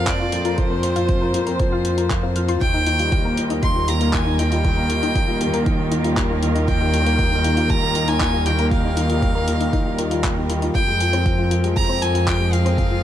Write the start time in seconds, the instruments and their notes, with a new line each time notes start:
Already playing: double bass section F2, string quartet A#2 F4, grand piano F3 C4 F4 A#4
0.05 string quartet C5, synth arpeggio sound C5, violin D5, kick, clap, closed hi-hat
0.20 grand piano F4, synth arpeggio sound F5
0.32 grand piano F3, closed hi-hat
0.45 synth arpeggio sound F4, grand piano A#4, closed hi-hat
0.51 violin D5
0.58 grand piano F3, synth arpeggio sound F4, violin C5, kick, closed hi-hat
0.71 grand piano C4, synth arpeggio sound A#4
0.83 grand piano F3, synth arpeggio sound C5, closed hi-hat
0.96 grand piano F4, synth arpeggio sound F5, closed hi-hat
1.09 grand piano F3, kick, closed hi-hat
1.21 synth arpeggio sound F4, grand piano A#4
1.34 grand piano F3, synth arpeggio sound F4, closed hi-hat
1.46 grand piano C4, synth arpeggio sound A#4, closed hi-hat
1.59 grand piano F3, synth arpeggio sound C5, kick, closed hi-hat
1.72 grand piano F4, synth arpeggio sound F5
1.85 grand piano F3, closed hi-hat
1.98 synth arpeggio sound F4, grand piano A#4, closed hi-hat
2.10 grand piano F3, synth arpeggio sound C6, kick, clap, closed hi-hat
2.23 grand piano C4, synth arpeggio sound F5
2.36 grand piano F3, synth arpeggio sound F6, closed hi-hat
2.48 grand piano F4, synth arpeggio sound C6, closed hi-hat
2.61 double bass section D#2, grand piano D#3, string quartet D#3, violin G5, kick, closed hi-hat
2.69 string quartet A#3
2.73 grand piano D#4, synth arpeggio sound D#4, string quartet F4
2.86 grand piano D#3, synth arpeggio sound D#4, string quartet A#4, closed hi-hat
2.99 grand piano G3, synth arpeggio sound F4, closed hi-hat
3.12 grand piano D#3, synth arpeggio sound G4, kick, closed hi-hat
3.25 grand piano A#3, synth arpeggio sound A#4
3.37 grand piano D#3, closed hi-hat
3.50 synth arpeggio sound D#4, grand piano D#4, closed hi-hat
3.63 grand piano D#3, synth arpeggio sound D#4, violin C6, kick, closed hi-hat
3.76 grand piano G3, synth arpeggio sound F4
3.88 grand piano D#3, synth arpeggio sound G4, violin A#5, closed hi-hat
4.01 grand piano A#3, synth arpeggio sound A#4, closed hi-hat
4.13 violin G#5, kick, clap, closed hi-hat
4.26 grand piano D#4, synth arpeggio sound D#4
4.39 grand piano D#3, synth arpeggio sound D#4, violin G5, closed hi-hat
4.52 grand piano G3, synth arpeggio sound F4, closed hi-hat
4.65 grand piano D#3, synth arpeggio sound G4, kick, closed hi-hat
4.77 grand piano A#3, synth arpeggio sound A#4
4.90 grand piano D#3, closed hi-hat
5.03 grand piano D#4, synth arpeggio sound D#4, closed hi-hat
5.15 grand piano D#3, synth arpeggio sound D#4, kick, closed hi-hat
5.28 grand piano G3, synth arpeggio sound F4
5.41 grand piano D#3, synth arpeggio sound G4, closed hi-hat
5.54 grand piano A#3, synth arpeggio sound A#4, closed hi-hat
5.66 grand piano D#3, kick, closed hi-hat
5.79 synth arpeggio sound D#4, grand piano D#4
5.92 grand piano D#3, synth arpeggio sound D#4, closed hi-hat
6.04 grand piano G3, synth arpeggio sound F4, closed hi-hat
6.17 grand piano D#3, synth arpeggio sound G4, kick, clap, closed hi-hat
6.30 grand piano A#3, synth arpeggio sound A#4
6.43 grand piano D#3, closed hi-hat
6.55 grand piano D#4, synth arpeggio sound D#4, closed hi-hat
6.68 grand piano D#3, synth arpeggio sound D#4, violin G5, kick, closed hi-hat
6.81 grand piano G3, synth arpeggio sound F4
6.93 grand piano D#3, synth arpeggio sound G4, closed hi-hat
7.06 grand piano A#3, synth arpeggio sound A#4, closed hi-hat
7.19 grand piano D#3, kick, closed hi-hat
7.32 grand piano D#4, synth arpeggio sound D#4
7.44 grand piano D#3, synth arpeggio sound D#4, closed hi-hat
7.57 grand piano G3, synth arpeggio sound F4, closed hi-hat
7.70 grand piano D#3, synth arpeggio sound G4, violin A#5, kick, closed hi-hat
7.83 grand piano A#3, synth arpeggio sound A#4
7.95 grand piano D#3, closed hi-hat
8.08 synth arpeggio sound D#4, grand piano D#4, violin G#5, closed hi-hat
8.21 grand piano D#3, synth arpeggio sound D#4, kick, clap, closed hi-hat
8.34 grand piano G3, synth arpeggio sound F4
8.46 grand piano D#3, synth arpeggio sound G4, violin G5, closed hi-hat
8.59 grand piano A#3, synth arpeggio sound A#4, closed hi-hat
8.71 grand piano D#3, violin F5, kick, closed hi-hat
8.85 grand piano D#4, synth arpeggio sound D#4
8.97 grand piano D#3, synth arpeggio sound D#4, closed hi-hat
9.10 grand piano G3, synth arpeggio sound F4, closed hi-hat
9.22 grand piano D#3, synth arpeggio sound G4, kick, closed hi-hat
9.35 grand piano A#3, synth arpeggio sound A#4
9.48 grand piano D#3, closed hi-hat
9.61 synth arpeggio sound D#4, grand piano D#4, closed hi-hat
9.73 grand piano D#3, synth arpeggio sound D#4, kick, closed hi-hat
9.86 grand piano G3, synth arpeggio sound F4
9.99 grand piano F4, synth arpeggio sound A#4, closed hi-hat
10.11 grand piano G3, synth arpeggio sound F4, closed hi-hat
10.24 grand piano G3, kick, clap, closed hi-hat
10.37 grand piano G3, synth arpeggio sound D#4
10.50 grand piano D#3, synth arpeggio sound A#4, closed hi-hat
10.62 grand piano F3, synth arpeggio sound D#4, closed hi-hat
10.75 double bass section F2, grand piano F3, string quartet F3, synth arpeggio sound F4, violin G5, kick, closed hi-hat
10.88 grand piano G#3, synth arpeggio sound G4
10.98 grand piano F3, string quartet C4, synth arpeggio sound G#4, closed hi-hat
11.13 grand piano C4, synth arpeggio sound C5, closed hi-hat
11.26 grand piano F3, kick, closed hi-hat
11.38 synth arpeggio sound F4, grand piano F4
11.51 grand piano F3, synth arpeggio sound F4, closed hi-hat
11.64 grand piano G#3, synth arpeggio sound G4, closed hi-hat
11.76 grand piano F3, synth arpeggio sound G#4, violin A#5, kick, closed hi-hat
11.86 grand piano C4, string quartet G#4, synth arpeggio sound C5
12.02 grand piano F3, violin G#5, closed hi-hat
12.14 synth arpeggio sound F4, grand piano F4, closed hi-hat
12.27 grand piano F3, synth arpeggio sound F4, violin G5, kick, clap, closed hi-hat
12.40 grand piano G#3, synth arpeggio sound G4
12.52 grand piano F3, synth arpeggio sound G#4, violin F5, closed hi-hat
12.65 grand piano C4, synth arpeggio sound C5, closed hi-hat
12.78 grand piano F3, kick, closed hi-hat
12.91 synth arpeggio sound F4, grand piano F4